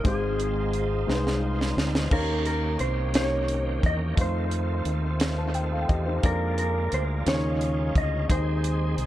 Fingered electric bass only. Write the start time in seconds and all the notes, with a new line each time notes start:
0.05 G#1
1.08 C2
1.77 D2
2.11 D#2
2.80 C2
3.83 E2
4.17 F2
4.85 D#2
5.89 E2
6.24 F2
6.93 D2
7.26 D#2
7.95 D2
8.30 D#2
8.98 C2